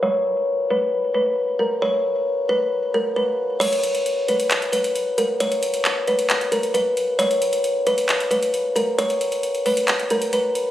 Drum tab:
CC |----------------|----------------|x---------------|----------------|
HH |----------------|----------------|xxxxx-xxxxxxx-x-|xxxxx-xxxxxxx-x-|
CP |----------------|----------------|--------x-------|----x---x-------|

CC |----------------|----------------|
HH |xxxxx-xxxxxxx-x-|xxxxxxoxxxxxx-x-|
CP |--------x-------|--------x-------|